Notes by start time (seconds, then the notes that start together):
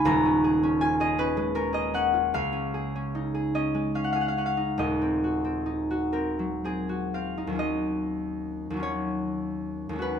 Already playing: C#2 G#3 A#3 D#4 F4 G#4 D#5 G#5 C#6
0.05 D#1 D#2 A#5
0.25 C#4
0.44 G#4
0.63 C#4
0.81 F4 G#5
1.00 G#4 D#5
1.18 C#4 B4
1.37 G#3
1.55 C#4 A#4
1.73 G#4 D#5
1.94 C#4 F#5
2.14 F4
2.34 C#2 F5
2.53 C#4
2.74 G#4
2.95 C#4
3.15 D#4
3.34 G#4
3.55 C#4 D#5
3.75 G#3
3.95 C#4 F5
4.04 F#5
4.13 G#4 F5
4.21 F#5
4.28 F5
4.38 C#4 F#5
4.46 F5
4.57 D#4
4.78 D#1 D#2 D#5
5.01 C4
5.24 F#4
5.44 C4
5.66 D#4
5.91 F#4
6.13 C4 A#4
6.39 F#3
6.64 C4 G#4
6.89 F#4
7.14 C4 F5
7.37 D#4
7.47 D#2 F#3
7.53 C#4 F4
7.59 D#5
8.70 D#2 F#3
8.77 C#4 F4
8.83 C#5
9.89 D#2 G#3
9.96 C#4 F#4
10.02 B4